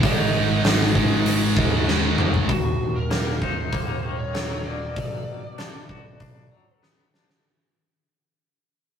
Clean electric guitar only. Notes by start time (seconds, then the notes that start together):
2.49 D#2
3.10 A#3
3.42 D#4
3.72 A#3
4.03 D#3
4.34 F#3
4.66 A#3
4.96 B2
5.58 D4
5.89 F#4
6.20 D4
6.52 F#3
6.83 B3
7.14 D4